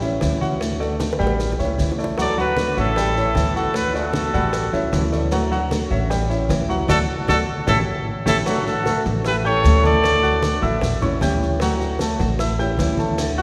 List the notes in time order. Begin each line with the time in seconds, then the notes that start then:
Already playing: A1
0.01 G3 C#4 E4 C#5 E5, high conga, maracas
0.20 D2 E3 G3 C#4 E4, high bongo, low bongo, high conga, maracas
0.41 F#4 F#5, high conga, maracas
0.60 D3 A3 D4 F#4, high bongo, high conga, maracas
0.79 A3 D4 F#4 A4 D5, high bongo, high conga, maracas
1.00 D3 A3 D4 F#4, high bongo, high conga, maracas
1.13 high bongo
1.19 A1 G3 A3 D4 F#4 G4 G5, maracas
1.27 high bongo
1.40 muted nylon-string guitar stroke, high bongo, high conga, maracas
1.52 low bongo
1.59 C#2 G3 C#4 E4 C#5 E5, high conga, maracas
1.65 low bongo
1.78 D2 E3 G3 C#4 E4, high conga, maracas
1.92 low bongo
1.98 A3 A4 D5, maracas
2.04 low bongo
2.17 D3 F#3 A3 D4 F#4 A4 D5 F#5, high bongo, high conga, maracas
2.37 F#3 A3 D4 F#4 B4 F#5, high conga, maracas
2.57 D3 A3 D4 F#4, high bongo, high conga, maracas
2.77 A1 A3 C#4 D4 E4 F#4 A4 C#5 E5, high conga, maracas
2.96 G3 G4 G5, muted nylon-string guitar stroke, high bongo, high conga, maracas
3.15 G3 C#4 E4 C#5 E5, high conga, maracas
3.34 D2 E3 G3 C#4 E4, high bongo, low bongo, high conga, maracas
3.55 F#4 A4 F#5, maracas
3.73 D3 A3 D4 F#4 B4, high bongo, high conga, maracas
3.93 A3 D4 F#4 A4 D5, high bongo, high conga, maracas
4.12 D3 A3 D4 F#4, high bongo, high conga, maracas
4.32 A1 G3 A3 D4 F#4 A4 F#5, high conga, maracas
4.53 muted nylon-string guitar stroke, high bongo, high conga, maracas
4.73 C#2 G3 C#4 E4 C#5 E5, high bongo, high conga, maracas
4.92 D2 E3 G3 C#4 E4, high bongo, low bongo, high conga, maracas
5.12 A3 A4 D5, high bongo, high conga, maracas
5.31 D3 F#3 A3 D4 F#4 F#5, high bongo, high conga, maracas
5.51 F#3 A3 D4 F#4 F#5, high conga, maracas
5.71 D3 A3 D4 F#4, high bongo, high conga, maracas
5.90 A1 A3 C#4 D4 F#4 C#5 E5, high conga, maracas
6.10 G3 G4 G5, muted nylon-string guitar stroke, high bongo, high conga, maracas
6.29 G3 C#4 E4 C#5 E5, maracas
6.49 D2 E3 G3 C#4 E4, high bongo, low bongo, high conga, maracas
6.69 F#3 F#4 F#5, maracas
6.88 D2 F#3 A3 D4 F#4 A4 D5, high bongo, high conga, maracas
7.27 D2 F#3 A3 D4 F#4 A4 D5, high bongo, high conga, maracas
7.67 A1 A3 C#4 E4 G4 A4 C#5, high bongo, high conga, maracas
8.26 A1 A3 C#4 E4 G4 A4 C#5, high bongo, high conga, maracas
8.46 D3 F#3 A3 D4 F#4 F#5, high bongo, high conga, maracas
8.65 A3 D4 F#4 A4, high conga, maracas
8.85 D3 A3 D4 F#4 A4 A5, high bongo, high conga, maracas
9.05 A1 A3 D4 F#4, high bongo, high conga, maracas
9.24 E4 G4 B4 E5 E6, muted nylon-string guitar stroke, high bongo, high conga, maracas
9.45 G3 C#4 E4 G4 A4 C#5 G5 G6, high bongo, high conga, maracas
9.64 D2 E3 G3 C#4 E4, high bongo, low bongo, high conga, maracas
9.83 A3 A4 D5 A5, high bongo, high conga, maracas
10.03 D3 A3 D4 F#4, high bongo, high conga, maracas
10.23 A3 D4 F#4 F#5 F#6, high conga, maracas
10.42 D3 A3 D4 F#4, high bongo, high conga, maracas
10.61 A1 A3 D4 E4 F#4 E5 E6, high bongo, high conga, maracas
10.81 muted nylon-string guitar stroke, high bongo, high conga, low conga, maracas
11.01 G3 C#4 E4 C#5 C#6, high bongo, high conga, low conga, maracas
11.21 D2 E3 G3 C#4 E4 G4 G5 G6, high bongo, low bongo, high conga, maracas
11.40 high bongo, high conga, maracas
11.60 D3 F#3 A3 D4 F#4 F#5, high bongo, high conga, maracas
11.80 A3 D4 F#4, high conga, maracas
11.99 D3 A3 D4 F#4 A4 A5, high bongo, high conga, maracas
12.19 A1 A3 D4 F#4, high bongo, high conga, maracas
12.39 E4 E5 E6, muted nylon-string guitar stroke, high bongo, high conga, maracas
12.59 G3 C#4 E4 G4 G5 G6, high bongo, high conga, maracas
12.78 D2 E3 G3 C#4 E4, high bongo, low bongo, high conga, maracas
12.97 A3 A4 A5, high bongo, high conga, maracas
13.18 D3 A3 D4 F#4, high bongo, high conga, maracas
13.38 F#4 F#5 F#6, high conga, maracas